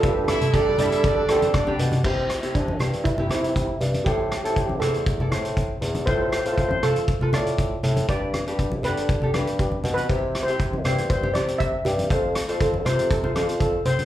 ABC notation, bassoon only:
X:1
M:4/4
L:1/16
Q:1/4=119
K:C
V:1 name="Bassoon" clef=bass
G,, G,,2 z2 G, G,4 D,4 B,,2 | C,3 C,3 G,,4 C,4 G,,2 | A,,3 A,,3 E,,4 A,,4 E,,2 | A,,3 A,,3 z4 A,,4 A,,2 |
G,,3 G,,3 D,4 G,,4 B,,2 | C,3 C,3 G,,4 C,4 G,,2 | F,,3 F,,3 C,4 F,,4 z2 |]